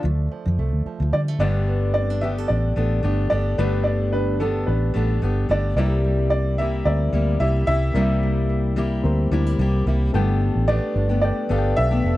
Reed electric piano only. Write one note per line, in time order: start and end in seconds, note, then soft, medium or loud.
5.77 6.59 C4 medium
5.77 6.59 A#4 medium
5.77 6.60 E5 medium
6.85 7.67 C4 medium
6.85 7.68 A#4 medium
6.85 7.68 E5 medium
7.94 8.76 C4 medium
7.94 8.77 A#4 medium
7.94 8.03 D5 medium
8.02 8.80 E5 medium
9.04 9.86 C4 medium
9.04 9.86 A#4 medium
9.04 9.87 C5 medium
10.13 10.95 B3 medium
10.13 10.95 A4 medium
10.13 10.96 G5 loud
11.22 11.44 B3 medium
11.22 11.44 A4 medium
11.22 11.45 G5 medium
11.50 12.12 B3 medium
11.50 12.12 A4 medium
11.50 11.58 F5 medium
11.59 12.16 G5 medium